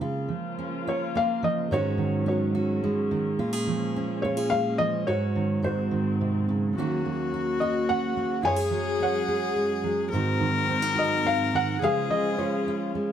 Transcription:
0.01 C#3 A#3 F4
0.28 F3
0.59 C#4
0.87 F4 C#5
1.15 A#3 F5
1.43 F3 D#5
1.70 G#2 D#3 F#3 G#3 C#4 F#4 C#5
1.98 D#3
2.26 C#4 F#4 C#5
2.55 F#4
2.84 G#3
3.11 D#3
3.38 A#2 G#3 F4
3.53 G#4
3.67 F3
3.96 C#4
4.22 F4 C#5
4.37 G#4
4.50 G#3 F5
4.78 F3 D#5
5.06 G#2 F#3 F#4 C#5
5.36 D#3
5.61 G#2 F#3 C4 F#4 C5
5.66 F#4
5.91 D#3
6.21 C3
6.49 C#3
6.74 D#2 C#3 D#3 F#4
6.78 A#3 C#4 F#4
7.06 A#3
7.34 F#4
7.60 F#4 D#5
7.89 C#4 F#5
8.17 A#3
8.43 F#2 G#3 F4 G#4 C#5 G#5
8.56 G#4
8.71 F#3
9.00 C#4 C#5 F#5
9.28 G#4
9.56 G#3
9.84 F#3
10.11 G#2 D#3 F#3 C4 D#4 A#4
10.15 F#4
10.40 D#3
10.69 C4
10.82 D#4
10.95 F#4 D#5
11.25 C4 F5
11.53 D#3 F#5
11.79 C#3 F3 G#3 F4 G#4
11.83 G#3 C#4 F4 G#4 F5
12.10 F3 D#5
12.38 C#4 F4 C#5
12.68 F4
12.95 G#3

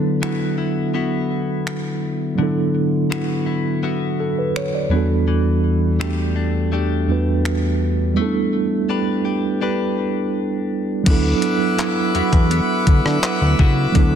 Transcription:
Already playing: D3 F#3 A3 B3 D4 E4 A4 B4
0.22 B3 E4 F#4, finger snap
0.58 E4
0.94 B3 E4 F#4
1.67 finger snap
2.35 D3 F#3 B3 D4
2.41 E4 A4
3.10 B3 E4 F#4, finger snap
3.46 E4
3.83 B3 E4 F#4
4.20 A4
4.39 B4
4.56 C#5, finger snap
4.75 D5
4.89 E2 E3 G3 B3
4.93 D4 F#4 A4
5.28 E3
6.00 A3 D4 G4, finger snap
6.36 D4
6.72 A3 D4 G4
7.08 E2 G3 B3 D4 F#4 B4
7.45 finger snap
8.14 G3 A3 B3 C#4
8.20 E4 A4
8.24 D4
8.89 D4 G4 B4
9.25 G4
9.61 D4 G4 B4
11.04 D2 F#3 B3 D4 B4 E5 F#5 D6, kick, closed hi-hat, crash
11.09 E4 A4
11.42 closed hi-hat
11.78 E4, clap, closed hi-hat
12.15 E2 B3 E4 F#4, closed hi-hat
12.33 E2, kick, closed hi-hat
12.50 B3, closed hi-hat
12.87 D2, kick, closed hi-hat
13.05 D3, cross-stick
13.23 B3, clap, closed hi-hat
13.42 D2
13.59 C#2 B3 E4 F#4, kick
13.92 D2 D3 F#3 B3 D4, kick, closed hi-hat
13.98 E4 A4

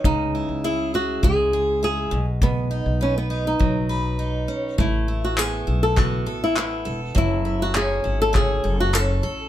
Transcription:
Already playing: F#3 C#4 D#4 B4
0.04 C#2 C#3 D#4, kick
0.35 E4
0.49 C#2
0.64 E4 G#4
0.94 E4 F#4
1.23 C#2 G#3 G#4, kick
1.53 G#4
1.83 E4 G#4
2.11 B1 B2
2.42 B2 B3, kick
2.71 D#4
2.86 B1
3.01 C#4 B4
3.18 B3
3.30 D#4
3.47 D#4
3.59 B1 F#3, kick
3.89 B4
4.19 D#4
4.48 C#4
4.78 A1 A3 E4, kick
5.08 E4
5.24 F#4
5.37 B3 G#4, clap
5.67 B1 E4
5.83 A4
5.96 B3 F#4, kick, clap
6.26 A1 A4
6.44 E4
6.56 B3 E4, clap
6.85 E1 A4
7.15 F#1 F#3 E4, kick
7.45 E4
7.62 F#4
7.75 C#4 G#4, clap
8.04 G#1 E4
8.22 A4
8.33 C#4 G#4, kick, clap
8.64 F#1 A4
8.80 F#4
8.93 C#4 A4, clap
9.23 A1 A4

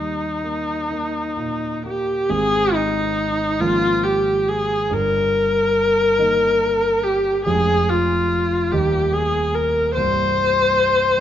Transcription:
Already playing: D#2 G3 D#4
0.43 A#3
0.91 A#3
1.37 A#2
1.85 A#3 G4
2.29 G#1 G#2 G#3 C4 G#4
2.74 D#4
3.60 G#1 G#2 F3 A#3 C#4 F4
4.03 G4
4.48 G#4
4.90 G1 G2 A#4
6.18 D#3 A#3 D#4
7.03 G4
7.45 F1 F2 F3 G#3 C#4 G#4
7.88 F4
8.71 D#1 D#2 A#3 D#4 G4
9.13 G#4
9.55 A#4
9.94 C1 C2 C5

